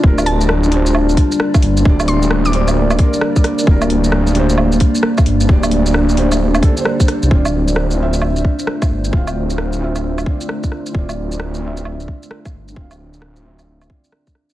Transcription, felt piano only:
X:1
M:4/4
L:1/16
Q:"Swing 16ths" 1/4=132
K:Dm
V:1 name="Felt piano"
[D,DGB]6 [D,DGc]8- [D,DGc]2 | [D,DGd]6 [D,DGc]4 [D,DGB]6 | [D,DGB]6 [D,DGc]8- [D,DGc]2 | [D,DGd]6 [D,DGc]4 [D,DGA] [D,DGc]4- [D,DGc] |
[D,CFd]6 [D,CFe]8- [D,CFe]2 | [D,CFf]6 [D,CFe]4 [D,CFd]6 | [D,CFd]6 [D,CFe]8- [D,CFe]2 | [D,CFf]6 [D,CFe]4 [D,CFd]6 |]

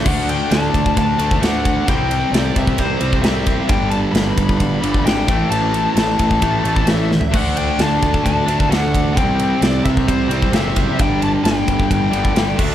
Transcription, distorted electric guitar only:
X:1
M:4/4
L:1/8
Q:1/4=132
K:Dmix
V:1 name="Distorted electric guitar" clef=bass
[D,A,D]4- [D,A,D] [D,A,D] [D,A,D]2 | [C,G,C]4- [C,G,C] [C,G,C] [C,G,C]2 | [G,,D,G,]4- [G,,D,G,] [G,,D,G,] [G,,D,G,] [A,,E,A,]- | [A,,E,A,]4 [A,,E,A,] [A,,E,A,]2 z |
[D,A,D]4- [D,A,D] [D,A,D] [D,A,D]2 | [C,G,C]4- [C,G,C] [C,G,C] [C,G,C]2 | [G,,D,G,]4- [G,,D,G,] [G,,D,G,] [G,,D,G,] [D,A,D] |]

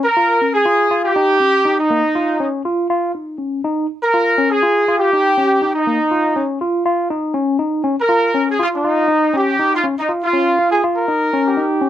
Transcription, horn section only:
X:1
M:4/4
L:1/16
Q:1/4=121
K:Dblyd
V:1 name="Horn section"
B4 A4 G6 E2- | E4 z12 | B4 A4 G6 E2- | E4 z12 |
B4 A F E4- E G3 F2 | E2 F4 A2 B4 G4 |]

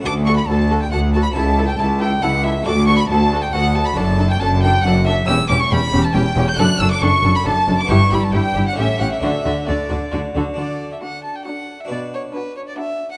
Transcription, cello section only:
X:1
M:3/4
L:1/8
Q:1/4=137
K:D
V:1 name="Cello section" clef=bass
D,,2 D,,2 D,,2 | C,,2 C,,2 C,,2 | D,,2 D,,2 D,,2 | F,,2 F,,2 F,,2 |
E,, E,, E,, E,, E,, E,, | F,, F,, F,, F,, F,, F,, | G,, G,, G,, G,, A,, A,, | D, D, D, D, D, D, |
D,2 z4 | B,,2 z4 |]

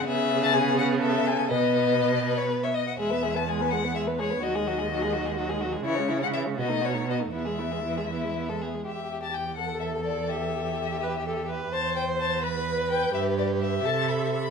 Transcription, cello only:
X:1
M:6/8
L:1/8
Q:3/8=83
K:E
V:1 name="Cello" clef=bass
C,6 | B,,4- B,, z | E,,6 | D,,6 |
C,3 B,,3 | E,,4- E,, z | [K:Em] E,,6- | E,,6 |
E,,6 | G,,3 C,3 |]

